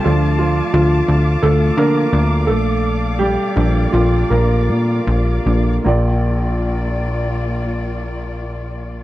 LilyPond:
<<
  \new Staff \with { instrumentName = "String section" } { \time 4/4 \key bes \major \tempo 4 = 80 << { <f'' d'''>1~ | <f'' d'''>1 | <bes f' d''>1 | } \\ { a''2.~ a''8 d''8~ | d''1 | r1 | } >> }
  \new Staff \with { instrumentName = "Upright piano" } { \time 4/4 \key bes \major f'8 <f f'>8 <f f'>4 <a a'>8 <bes bes'>4 <a a'>8~ | <a a'>8 <g g'>4 <f f'>8 <bes bes'>4. r8 | <bes f' d''>1 | }
  \new Staff \with { instrumentName = "Upright piano" } { \time 4/4 \key bes \major <f a d'>4. r4 <f d' a'>8 r4 | r4 <f bes d'>4. r4 <f bes d'>8 | bes,,1 | }
  \new Staff \with { instrumentName = "Analog synth bass" } { \clef bass \time 4/4 \key bes \major d,4 d,8 d,8 d,8 d8 d,8 bes,,8~ | bes,,4 bes,,8 bes,,8 bes,,8 bes,8 bes,,8 bes,,8 | bes,,1 | }
>>